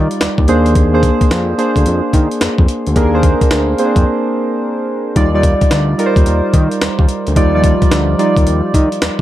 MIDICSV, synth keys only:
0, 0, Header, 1, 2, 480
1, 0, Start_track
1, 0, Tempo, 550459
1, 660, Time_signature, 4, 2, 24, 8
1, 8035, End_track
2, 0, Start_track
2, 0, Title_t, "Synth keys"
2, 0, Program_c, 0, 88
2, 0, Control_c, 0, 64, 127
2, 0, Note_on_c, 0, 55, 71
2, 0, Note_on_c, 0, 63, 70
2, 0, Note_on_c, 0, 65, 68
2, 0, Note_on_c, 0, 74, 89
2, 149, Note_off_c, 0, 55, 0
2, 153, Note_off_c, 0, 63, 0
2, 153, Note_off_c, 0, 65, 0
2, 155, Note_off_c, 0, 74, 0
2, 416, Note_on_c, 0, 58, 84
2, 419, Note_on_c, 0, 62, 82
2, 424, Note_on_c, 0, 68, 78
2, 427, Note_on_c, 0, 72, 88
2, 430, Control_c, 0, 64, 0
2, 563, Control_c, 0, 64, 127
2, 720, Note_off_c, 0, 58, 0
2, 722, Note_off_c, 0, 62, 0
2, 724, Note_off_c, 0, 68, 0
2, 725, Note_off_c, 0, 72, 0
2, 812, Note_on_c, 0, 58, 80
2, 816, Note_on_c, 0, 62, 71
2, 822, Note_on_c, 0, 68, 79
2, 825, Note_on_c, 0, 72, 100
2, 1222, Note_off_c, 0, 58, 0
2, 1224, Note_off_c, 0, 62, 0
2, 1227, Note_off_c, 0, 68, 0
2, 1229, Note_off_c, 0, 72, 0
2, 1379, Note_on_c, 0, 58, 78
2, 1380, Note_on_c, 0, 62, 75
2, 1384, Note_on_c, 0, 68, 72
2, 1387, Note_on_c, 0, 72, 89
2, 2071, Note_off_c, 0, 58, 0
2, 2072, Note_off_c, 0, 62, 0
2, 2074, Note_off_c, 0, 68, 0
2, 2075, Note_off_c, 0, 72, 0
2, 2578, Note_on_c, 0, 58, 88
2, 2580, Note_on_c, 0, 62, 76
2, 2581, Note_on_c, 0, 68, 81
2, 2588, Note_on_c, 0, 70, 95
2, 2689, Note_off_c, 0, 58, 0
2, 2690, Note_off_c, 0, 62, 0
2, 2691, Note_off_c, 0, 68, 0
2, 2694, Note_off_c, 0, 70, 0
2, 2735, Note_on_c, 0, 58, 85
2, 2737, Note_on_c, 0, 62, 72
2, 2742, Note_on_c, 0, 68, 75
2, 2745, Note_on_c, 0, 72, 91
2, 3144, Note_off_c, 0, 58, 0
2, 3145, Note_off_c, 0, 62, 0
2, 3147, Note_off_c, 0, 68, 0
2, 3149, Note_off_c, 0, 72, 0
2, 3300, Note_on_c, 0, 58, 70
2, 3304, Note_on_c, 0, 60, 56
2, 3309, Note_on_c, 0, 68, 70
2, 3309, Note_on_c, 0, 72, 91
2, 3360, Note_on_c, 0, 62, 70
2, 3375, Note_off_c, 0, 60, 0
2, 3991, Note_off_c, 0, 58, 0
2, 3996, Note_off_c, 0, 68, 0
2, 3996, Note_off_c, 0, 72, 0
2, 4021, Note_off_c, 0, 62, 0
2, 4496, Note_on_c, 0, 55, 86
2, 4502, Note_on_c, 0, 63, 74
2, 4504, Note_on_c, 0, 65, 74
2, 4506, Note_on_c, 0, 74, 95
2, 4511, Control_c, 0, 64, 0
2, 4608, Note_off_c, 0, 55, 0
2, 4611, Note_off_c, 0, 63, 0
2, 4612, Note_off_c, 0, 65, 0
2, 4613, Note_off_c, 0, 74, 0
2, 4640, Control_c, 0, 64, 127
2, 4657, Note_on_c, 0, 55, 84
2, 4660, Note_on_c, 0, 63, 80
2, 4663, Note_on_c, 0, 65, 72
2, 4668, Note_on_c, 0, 74, 94
2, 5065, Note_off_c, 0, 55, 0
2, 5066, Note_off_c, 0, 63, 0
2, 5068, Note_off_c, 0, 65, 0
2, 5070, Note_off_c, 0, 74, 0
2, 5217, Note_on_c, 0, 55, 81
2, 5219, Note_on_c, 0, 63, 70
2, 5224, Note_on_c, 0, 65, 72
2, 5228, Note_on_c, 0, 70, 66
2, 5286, Note_on_c, 0, 72, 90
2, 5297, Note_off_c, 0, 70, 0
2, 5910, Note_off_c, 0, 55, 0
2, 5911, Note_off_c, 0, 63, 0
2, 5913, Note_off_c, 0, 65, 0
2, 5944, Note_off_c, 0, 72, 0
2, 6416, Note_on_c, 0, 55, 84
2, 6421, Note_on_c, 0, 63, 75
2, 6425, Note_on_c, 0, 65, 80
2, 6427, Note_on_c, 0, 74, 96
2, 6528, Note_off_c, 0, 55, 0
2, 6530, Note_off_c, 0, 63, 0
2, 6532, Note_off_c, 0, 65, 0
2, 6533, Note_off_c, 0, 74, 0
2, 6576, Note_on_c, 0, 53, 70
2, 6580, Note_on_c, 0, 63, 75
2, 6583, Note_on_c, 0, 65, 76
2, 6585, Note_on_c, 0, 74, 94
2, 6615, Note_off_c, 0, 53, 0
2, 6633, Note_on_c, 0, 55, 80
2, 6986, Note_off_c, 0, 63, 0
2, 6988, Note_off_c, 0, 65, 0
2, 6989, Note_off_c, 0, 74, 0
2, 7012, Note_off_c, 0, 55, 0
2, 7138, Note_on_c, 0, 55, 80
2, 7142, Note_on_c, 0, 63, 70
2, 7144, Note_on_c, 0, 65, 70
2, 7145, Note_on_c, 0, 74, 88
2, 7830, Note_off_c, 0, 55, 0
2, 7832, Note_off_c, 0, 63, 0
2, 7833, Note_off_c, 0, 65, 0
2, 7834, Note_off_c, 0, 74, 0
2, 8035, End_track
0, 0, End_of_file